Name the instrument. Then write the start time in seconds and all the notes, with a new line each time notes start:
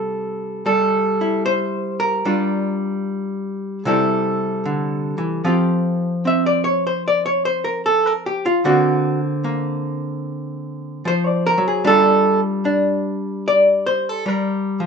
hollow-body jazz guitar
Already playing: C3 G3 E4 G4 A4
0.66 G3 A4
1.21 E4
1.46 C5
2.00 A#4
2.25 G3 D4 F4
3.85 C3 G3 E4 G4 A4
4.65 D3
5.18 E3
5.44 F3 C4 F4 G4
6.25 C4 E5
6.46 D5
6.64 C#5
6.87 C5
7.08 D5
7.26 C#5
7.45 C5
7.64 A#4
7.86 A4
8.06 A#4
8.26 G4
8.46 F4
8.65 D3 A#3 C4 F#4
9.44 A#3
11.05 F3 C5
11.27 D5
11.47 A#4
11.58 F#3
11.68 G#4
11.84 G3 D4 F4 A4
12.65 D4
13.48 D5
13.86 C5
14.09 A4
14.26 G3 A#4
14.80 F3